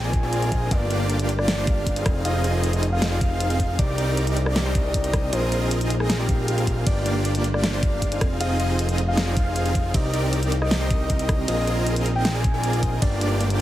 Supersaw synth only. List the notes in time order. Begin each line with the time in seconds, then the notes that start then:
0.04 C4 F4 G#4 A#4 D5
0.23 C4 F4 G#4 A#4 D5
0.52 C4 F4
0.71 A#3 D4 F4 G4 D5
0.90 A#3 D4 F4 G4 D5
1.19 A#3 D4 F4 G4 D5
1.58 A#3 D4 F4 G4 C5
1.67 A#3 D4 F4 G4 F5
1.96 C4 D#4 F4 G#4 F5
2.25 C4 D#4 F4 G#4 D#5
2.44 C4 D#4 F4 G#4 D#5
2.73 C4 D#4 F4 G#4 D#5
3.12 C4 D#4 F4 G#4 D5
3.21 C4 D#4 F4 F5
3.50 C4 D#4 F4 G#4 F5
3.79 C4 D#4 G4 A#4 D5
3.98 C4 D#4 G4 A#4 D5
4.27 C4 D#4 G4 A#4 D5
4.66 C4 D#4 G4 A#4 C5
4.75 C4 D#4 G4 A#4 D#5
5.04 C4 D#4 G4 A#4 D#5
5.33 C4 F4 G#4 A#4 D#5
5.52 C4 F4 G#4 A#4 D#5
5.81 C4 F4 G#4 A#4 D#5
6.19 C4 F4 G#4 A#4 D5
6.29 C4 F4 G#4 A#4 F5
6.58 C4 F4 G#4 A#4 F5
6.86 A#3 D4 F4 G4 D5
7.06 A#3 D4 F4 G4 D5
7.35 A#3 D4 F4 G4 D5
7.73 A#3 D4 F4 G4 C5
7.83 A#3 D4 F4 G4 F5
8.12 C4 D#4 F4 G#4 F5
8.40 C4 D#4 F4 G#4 D#5
8.60 C4 D#4 F4 G#4 D#5
8.89 C4 D#4 F4 G#4 D#5
9.27 C4 D#4 F4 G#4 D5
9.65 C4 D#4 F4 G#4 F5
9.94 C4 D#4 G4 A#4 D5
10.13 C4 D#4 G4 A#4 D5
10.42 C4 D#4 G4 A#4 D5
10.81 C4 D#4 G4 A#4 C5
10.90 C4 D#4 G4 A#4 D#5
11.19 C4 D#4 G4 A#4 D#5
11.48 C4 F4 G#4 A#4 D#5
11.67 C4 F4 G#4 A#4 D#5
11.96 C4 F4 G#4 A#4 D#5
12.35 C4 F4 G#4 A#4 D5
12.54 C4 F4 G#4 A#4 D5
12.83 C4 F4 G#4 A#4 D#5
13.02 A#3 D4 F4 G4 D5
13.21 A#3 D4 F4 G4 D5
13.50 A#3 D4 F4 G4 D5